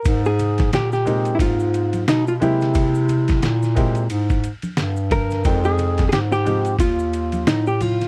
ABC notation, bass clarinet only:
X:1
M:4/4
L:1/8
Q:"Swing 16ths" 1/4=89
K:Ab
V:1 name="Bass clarinet" clef=bass
A,,2 B,,2 A,,2 _C, =C,- | C,2 B,,2 A,, z G,,2 | F,,2 A,,2 E,,2 =A,,2 |]